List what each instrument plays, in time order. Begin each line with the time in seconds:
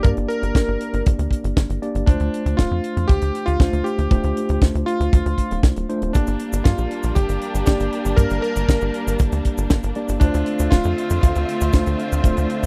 0.03 analog synth bass G2, tine electric piano A#3 D4 G4 D5, electric grand piano A#4, kick, closed hi-hat
0.17 analog synth bass G1, closed hi-hat
0.28 electric grand piano A#4, closed hi-hat
0.43 analog synth bass G1, closed hi-hat
0.55 analog synth bass G1, kick, snare, closed hi-hat
0.68 analog synth bass G1
0.81 closed hi-hat
0.93 analog synth bass G1, closed hi-hat
1.06 analog synth bass G1, kick, closed hi-hat
1.19 analog synth bass D2, closed hi-hat
1.31 kick, closed hi-hat
1.44 analog synth bass G1, closed hi-hat
1.57 analog synth bass G1, kick, snare, closed hi-hat
1.70 analog synth bass G1, closed hi-hat
1.82 tine electric piano A#3 D4 G4 D5, closed hi-hat
1.95 analog synth bass G1, closed hi-hat
2.06 analog synth bass D2, tine electric piano A3 D4 F4 C5, electric grand piano D4, kick, closed hi-hat
2.20 analog synth bass D2, closed hi-hat
2.34 closed hi-hat
2.46 analog synth bass D2, closed hi-hat
2.57 analog synth bass D1, electric grand piano F4, kick, snare, closed hi-hat
2.71 analog synth bass F2
2.84 closed hi-hat
2.97 analog synth bass F2, closed hi-hat
3.08 analog synth bass D2, electric grand piano G4, kick, closed hi-hat
3.21 analog synth bass D2, closed hi-hat
3.35 closed hi-hat
3.46 analog synth bass D2, electric grand piano F4, closed hi-hat
3.60 analog synth bass D2, tine electric piano A3 D4 F4 C5, kick, snare, closed hi-hat
3.73 analog synth bass D2, closed hi-hat
3.84 electric grand piano G4, closed hi-hat
3.98 analog synth bass D2, closed hi-hat
4.11 analog synth bass D1, tine electric piano A3 D4 F4 C5, kick, closed hi-hat
4.23 analog synth bass D2, closed hi-hat
4.37 closed hi-hat
4.49 analog synth bass D2, closed hi-hat
4.61 analog synth bass D2, kick, snare, closed hi-hat
4.75 analog synth bass D2, closed hi-hat
4.86 electric grand piano F4, closed hi-hat
5.00 analog synth bass D2, closed hi-hat
5.13 analog synth bass D2, kick, closed hi-hat
5.26 analog synth bass D2, closed hi-hat
5.38 kick, closed hi-hat
5.51 analog synth bass D1, closed hi-hat
5.63 analog synth bass C2, kick, snare, closed hi-hat
5.76 analog synth bass D1, closed hi-hat
5.89 tine electric piano A3 D4 F4 C5, closed hi-hat
6.02 analog synth bass D1, closed hi-hat
6.13 analog synth bass G1, string section G3 A#3 D4, tine electric piano A#3 D4 G4 D5, electric grand piano D4, kick, closed hi-hat, cabasa
6.27 analog synth bass G1, closed hi-hat, cabasa
6.39 closed hi-hat
6.53 analog synth bass G1, closed hi-hat, cabasa
6.64 analog synth bass G2, electric grand piano F4, kick, snare, closed hi-hat, cabasa
6.78 analog synth bass A#1, cabasa
6.91 closed hi-hat
7.03 analog synth bass A#1, closed hi-hat, cabasa
7.15 analog synth bass G1, electric grand piano G4, kick, closed hi-hat, cabasa
7.29 analog synth bass G1, closed hi-hat, cabasa
7.41 closed hi-hat
7.54 analog synth bass G1, closed hi-hat, cabasa
7.66 analog synth bass G1, tine electric piano A#3 D4 G4 D5, electric grand piano G4, kick, snare, closed hi-hat, cabasa
7.80 analog synth bass G1, closed hi-hat, cabasa
7.92 closed hi-hat
8.05 analog synth bass G1, closed hi-hat, cabasa
8.17 analog synth bass G2, tine electric piano A#3 D4 G4 D5, electric grand piano A#4, kick, closed hi-hat, cabasa
8.30 analog synth bass G1, closed hi-hat, cabasa
8.42 electric grand piano A#4, closed hi-hat
8.56 analog synth bass G1, closed hi-hat, cabasa
8.69 analog synth bass G1, kick, snare, closed hi-hat, cabasa
8.81 analog synth bass G1, cabasa
8.94 closed hi-hat
9.07 analog synth bass G1, closed hi-hat, cabasa
9.19 analog synth bass G1, kick, closed hi-hat, cabasa
9.32 analog synth bass D2, closed hi-hat, cabasa
9.45 kick, closed hi-hat
9.58 analog synth bass G1, closed hi-hat, cabasa
9.70 analog synth bass G1, kick, snare, closed hi-hat, cabasa
9.83 analog synth bass G1, closed hi-hat, cabasa
9.95 tine electric piano A#3 D4 G4 D5, closed hi-hat
10.09 analog synth bass G1, closed hi-hat, cabasa
10.20 analog synth bass D2, string section D3 A3 C4 F4 E5, tine electric piano A3 D4 F4 C5, electric grand piano D4, kick, closed hi-hat, cabasa
10.34 analog synth bass D2, closed hi-hat, cabasa
10.46 closed hi-hat
10.59 analog synth bass D2, closed hi-hat, cabasa
10.71 analog synth bass D1, electric grand piano F4, kick, snare, closed hi-hat, cabasa
10.84 analog synth bass F2, cabasa
10.98 closed hi-hat
11.10 analog synth bass F2, closed hi-hat, cabasa
11.21 analog synth bass D2, electric grand piano F4, kick, closed hi-hat, cabasa
11.35 analog synth bass D2, closed hi-hat, cabasa
11.49 closed hi-hat
11.61 analog synth bass D2, closed hi-hat, cabasa
11.73 analog synth bass D2, tine electric piano A3 D4 F4 C5, kick, snare, closed hi-hat, cabasa
11.86 analog synth bass D2, closed hi-hat, cabasa
11.99 closed hi-hat
12.12 analog synth bass D2, closed hi-hat, cabasa
12.24 analog synth bass D1, tine electric piano A3 D4 F4 C5, kick, closed hi-hat, cabasa
12.37 analog synth bass D2, closed hi-hat, cabasa
12.50 closed hi-hat
12.63 analog synth bass D2, closed hi-hat